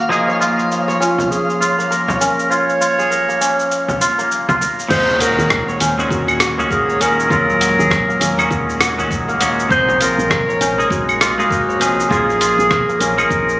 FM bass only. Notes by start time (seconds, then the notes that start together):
4.90 D#2
5.38 D#2
5.81 D#2
6.11 D#2
6.59 C#2
7.01 D#2
7.31 D#2
7.79 D#2
8.21 D#2
8.51 D#2
8.99 C#2
9.41 D#2
9.71 A#1
10.18 A#1
10.61 A#1
10.90 A#1
11.38 G#1
11.80 A#1
12.11 A#1
12.58 A#1
13.00 A#1
13.30 A#1